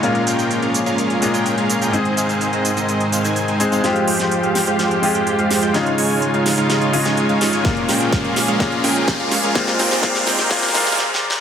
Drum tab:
HH |x-----x-----x-----x-----x-----x-----x-----x-----x-----x-----x-----x-----x-----x-----x-----x-----|x-----x-----x-----x-----x-----x-----x-----x-----x-----x-----x-----x-----x-----x-----x-----x-----|x-----x-----o-----x-----x-----x-----o-----x-----x-----x-----o-----x-----x-----x-----o-----x-----|x-----x-----o-----o-----x-----x-----o-----x-----x-----x-----o-----x-----x-----x-----o-----x-----|
SH |x-----------x-----x-----x-----------x-----x-----x-----------x-----x-----x-----------x-----x-----|x-----------x-----x-----x-----------x-----x-----x-----------x-----x-----x-----------x-----x-----|------------------------------------------------------------------------------------------------|------------------------------------------------------------------------------------------------|
SD |------------------------------------------------------------------------------------------------|------------------------------------------------------------------------------------------------|o-----------------o-----------------o-----------o-----------------------------------o-----------|o-----------------------------------o-----------o-----------------o-----------------o-----------|
BD |------------------------------------------------------------------------------------------------|------------------------------------------------------------------------------------------------|------------------------------------------------------------------------------------------------|------------------------------------------------------------------------------------------------|

HH |x-----x-----o-----x-----x-----x-----o-----x-----x-----x-----o-----x-----x-----x-----o-----x-----|x-----x-----o-----o-----------x-----o-----x-----x-----x-----o-----x-----------------------------|
SH |------------------------------------------------------------------------------------------------|------------------------------------------------------------------------------------------------|
SD |o-----------o-----------o-----------o-----------o-----------o-----------o-----------o-----------|o-----o-----o-----o-----o-----o-----o-----o-----o--o--o--o--o--o--o--o--o-------o-------o-------|
BD |o-----------------------o-----------------------o-----------------------o-----------------------|o-----------------------o-----------------------o-----------------------------------------------|